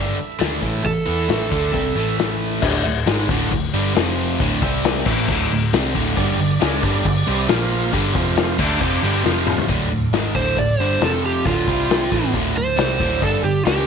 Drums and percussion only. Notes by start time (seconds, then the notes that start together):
0.18 open hi-hat
0.40 snare, open hi-hat
0.63 kick, open hi-hat
0.85 kick, open hi-hat
1.07 open hi-hat
1.29 snare, open hi-hat
1.52 kick, open hi-hat
1.74 kick, open hi-hat
1.97 open hi-hat
2.19 snare, open hi-hat
2.40 open hi-hat
2.62 kick, crash
2.85 open hi-hat
3.06 snare, open hi-hat
3.19 snare
3.29 kick, open hi-hat
3.51 kick, open hi-hat
3.73 open hi-hat
3.96 snare, open hi-hat
4.18 open hi-hat
4.40 kick, open hi-hat
4.62 kick, open hi-hat
4.84 snare, open hi-hat
4.96 snare
5.06 kick, crash
5.28 kick
5.51 open hi-hat
5.73 snare, open hi-hat
5.95 kick, open hi-hat
6.17 kick, open hi-hat
6.39 open hi-hat
6.61 snare, open hi-hat
6.73 snare
6.83 kick, open hi-hat
7.05 kick, open hi-hat
7.27 open hi-hat
7.48 snare, open hi-hat
7.71 open hi-hat
7.93 kick, open hi-hat
8.15 kick, open hi-hat
8.37 snare, open hi-hat
8.59 kick, crash
8.81 kick
9.03 open hi-hat
9.26 snare
9.47 mid tom
9.58 floor tom
9.69 kick, open hi-hat
10.13 snare, open hi-hat
10.35 kick
10.57 kick, open hi-hat
11.01 snare, open hi-hat
11.46 kick, open hi-hat
11.68 kick
11.90 snare, open hi-hat
12.12 kick
12.34 kick, open hi-hat
12.78 snare, open hi-hat
13.00 kick
13.22 kick, open hi-hat
13.66 snare, open hi-hat
13.79 snare